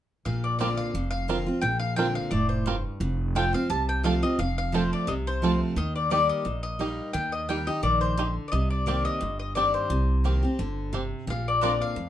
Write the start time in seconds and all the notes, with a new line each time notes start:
0.25 A#1 A#2 F5
0.44 D5
0.59 D3 A#3 C4 F4 A#4 D5
0.77 F5
0.94 F1 F2
1.11 F5
1.28 D3 A#3 C4 F4 A#4
1.47 C4 F4
1.61 A#1 A#2 G5
1.79 F5
1.96 D3 A#3 C4 F4 A#4 G5
2.15 F5
2.31 F1 A2 D5
2.49 C5
2.66 G2 C4 F4 A#4
3.00 F1 F2
3.35 F3 A3 C4 F4 A4 G5
3.53 C4 F4 F5
3.70 C2 C3 A5
3.89 G5
4.03 F3 A3 C4 F4 A4 F5
4.22 C4 F4 D#5
4.39 F1 F2 F5
4.58 F5
4.72 F3 A3 C4 F4 A4 C5
4.93 D5
5.07 C2 C3 D#5
5.27 C5
5.42 F3 A3 C4 F4 A4
5.76 D#2 D#3 D#5
5.96 D5
6.10 G3 A#3 D#4 G4 D5
6.29 D#5
6.45 A#1 A#2
6.63 D#5
6.79 G3 A#3 D#4 G4
7.13 D#2 D#3 G5
7.32 D#5
7.48 G3 A#3 D#4 G4 G5
7.67 D#4 G4 D#5
7.83 A#1 D#3 D5
8.01 C5
8.17 D3 D#4 G4
8.48 D5 D#5
8.52 C2 C3
8.70 D5
8.86 D#3 A#3 C4 G4 D5
9.05 D#5
9.21 G1 G2
9.39 D#5
9.55 D#3 A#3 C4 G4 D5
9.74 C5
9.90 C2 C3
10.24 D#3 A#3 C4 G4
10.43 C4 G4
10.59 G1 D3
10.93 C3 C4 G4
11.27 A#1 A#2 F5
11.48 D5
11.61 D3 A#3 C4 D4 F4 A#4 D5 F5 C6
11.82 F5
11.96 F2